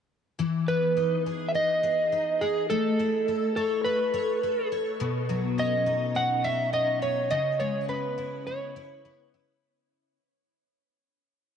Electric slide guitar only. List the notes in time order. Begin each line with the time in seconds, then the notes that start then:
0.68 B4
1.49 E5
1.55 D#5
2.41 G#4
2.70 A4
3.56 A4
3.84 B4
5.59 D#5
6.16 F#5
6.45 E5
6.74 D#5
7.02 C#5
7.31 D#5
7.60 C#5
7.89 B4
8.47 C#5